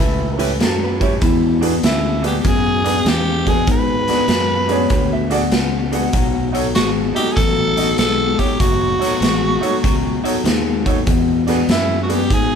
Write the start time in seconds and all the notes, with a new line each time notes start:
Already playing: E4 B4
0.00 C#2 A2 E3
0.38 A2 E3 C#4 E4 G4 A4 B4, closed hi-hat
0.60 F#2 A2 F#3 A4, snare, closed hi-hat
0.84 B4
1.00 A2 E3 C#4 E4 G4 C#5, kick, closed hi-hat
1.21 E2 B2 E4, kick, closed hi-hat
1.61 E2 B2 D4 F#4 G#4 B4, closed hi-hat
1.82 D2 E2 C#3 E4, snare, closed hi-hat
2.22 E2 B2 D4 F#4 G#4 B4, closed hi-hat
2.27 G4
2.41 E2 G4, closed hi-hat
2.45 F#2 B2 G#4, kick
2.84 E2 B2 D4 F#4 G#4 B4, closed hi-hat
3.05 E2 C#3 G4, snare, closed hi-hat
3.46 E2 B2 D4 F#4 G#4 B4, kick, closed hi-hat
3.67 E2 G#2 B2, kick, closed hi-hat
3.72 B4
4.07 E2 B2 D4 F#4 G#4 B4, snare, closed hi-hat
4.28 E2 F#2 C#3, snare, closed hi-hat
4.68 E2 B2 D4 F#4 G#4 B4 C#5, closed hi-hat
4.90 D2 E2 B2, kick, closed hi-hat
5.13 E5
5.30 E2 B2 D4 F#4 G#4 D5 F#5, closed hi-hat
5.52 C#2 E2 C#3, snare, closed hi-hat
5.92 E2 B2 D4 F#4 G#4 B4 F#5, closed hi-hat
6.13 B1 B2 F#3, kick, closed hi-hat
6.52 B2 F#3 D#4 F#4 A4 C#5, closed hi-hat
6.75 G#1 B2 G#3 F#4, snare, closed hi-hat
7.14 B2 F#3 D#4 F#4 G4 A4 D#5, muted fingered electric bass stroke, closed hi-hat
7.33 G#4 A4
7.37 A1 B2 F#3, kick, closed hi-hat
7.77 B2 F#3 D#4 F#4 A4 D#5, closed hi-hat
7.98 B1 B2 G#3 A4, snare, closed hi-hat
8.38 B2 F#3 D#4 F#4 G4 A4 C#5, muted fingered electric bass stroke, kick, closed hi-hat
8.60 F#1 B2 F#3 F#4, kick, closed hi-hat
8.99 B2 F#3 D#4 F#4 A4 C#5, snare, closed hi-hat
9.21 A1 B2 G#3, snare, closed hi-hat
9.61 B2 F#3 D#4 F#4 A4 C#5, closed hi-hat
9.83 C#2 B2 F#3, kick, closed hi-hat
10.23 B2 F#3 D#4 F#4 A4 C#5, muted fingered electric bass stroke, closed hi-hat
10.44 D#2 B2 G#3, snare, closed hi-hat
10.86 B2 F#3 D#4 F#4 A4 C#5, kick, closed hi-hat
11.07 E2 B2, kick, closed hi-hat
11.47 E2 B2 D4 F#4 G#4 B4, snare, closed hi-hat
11.68 E2 F#2 C#3 E4, snare, closed hi-hat
12.03 F#4
12.08 E2 B2 D4 F#4 G#4 B4, closed hi-hat
12.12 G4
12.30 E2 G#2 B2 G#4, kick, closed hi-hat